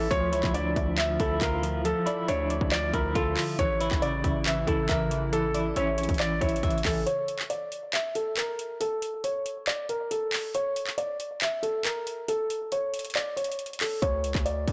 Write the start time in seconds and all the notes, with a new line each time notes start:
Already playing: A1 E3 E4 E5
0.11 D2 D3 F3 C#5, kick, closed hi-hat
0.32 C#2 E4 C#5, closed hi-hat
0.44 D2, kick, clap
0.54 D4 D5, closed hi-hat
0.76 D2 E5, kick, closed hi-hat
0.98 F3 E5, clap, closed hi-hat
1.20 D2 E4 A4, kick, closed hi-hat
1.41 D2 F4 A#4, kick, clap, closed hi-hat
1.63 F3, closed hi-hat
1.85 F3 A4, closed hi-hat
2.06 E4 D5, closed hi-hat
2.28 D2 D4 C#5 E5, closed hi-hat
2.50 D5, closed hi-hat
2.61 D2, kick
2.72 F3 D5, clap, closed hi-hat
2.94 D2 E4 A#4, kick, closed hi-hat
3.15 D2 F4 A4, kick, closed hi-hat
3.37 F3, clap, open hi-hat
3.59 A1 C#3 E3 E4 C#5, kick, closed hi-hat
3.81 E4 C#5, closed hi-hat
3.91 A1, kick, clap
4.02 C#3 D5, closed hi-hat
4.24 A1 E5, kick, closed hi-hat
4.46 E3 E5, clap, closed hi-hat
4.67 A1 E4 A4, kick, closed hi-hat
4.89 A1 A#4 E5, kick, clap, closed hi-hat
5.11 E3, closed hi-hat
5.32 E3 A4, closed hi-hat
5.54 E4 D5, closed hi-hat
5.76 A1 C#4 C#5 E5, closed hi-hat
5.98 A#1 C#5, closed hi-hat
6.03 closed hi-hat
6.09 A1, kick, closed hi-hat
6.14 closed hi-hat
6.19 E3 D5, clap, closed hi-hat
6.41 A1 E4 C#5 E5, kick, closed hi-hat
6.49 closed hi-hat
6.56 closed hi-hat
6.63 A1 E5, kick, closed hi-hat
6.70 closed hi-hat
6.78 closed hi-hat
6.85 A1 E3 A4, kick, clap, open hi-hat
7.06 C#5, closed hi-hat
7.28 closed hi-hat
7.39 clap
7.50 D5, closed hi-hat
7.72 closed hi-hat
7.93 E5, clap, closed hi-hat
8.15 A4, closed hi-hat
8.37 A#4, clap, closed hi-hat
8.59 closed hi-hat
8.80 A4, closed hi-hat
9.02 closed hi-hat
9.24 C#5, closed hi-hat
9.46 closed hi-hat
9.67 D5, clap, closed hi-hat
9.89 A#4, closed hi-hat
10.11 A4, closed hi-hat
10.33 clap, open hi-hat
10.54 C#5, closed hi-hat
10.76 closed hi-hat
10.87 clap
10.98 D5, closed hi-hat
11.20 closed hi-hat
11.41 E5, clap, closed hi-hat
11.63 A4, closed hi-hat
11.85 A#4, clap, closed hi-hat
12.07 closed hi-hat
12.28 A4, closed hi-hat
12.50 closed hi-hat
12.72 C#5, closed hi-hat
12.94 closed hi-hat
12.99 closed hi-hat
13.05 closed hi-hat
13.10 closed hi-hat
13.15 D5, clap, closed hi-hat
13.37 C#5, closed hi-hat
13.44 closed hi-hat
13.52 closed hi-hat
13.59 closed hi-hat
13.66 closed hi-hat
13.73 closed hi-hat
13.81 A4, clap, open hi-hat
14.02 D2 C#5, kick, closed hi-hat
14.24 C#2, closed hi-hat
14.35 D2, kick, clap
14.46 D5, closed hi-hat
14.68 D2, kick, closed hi-hat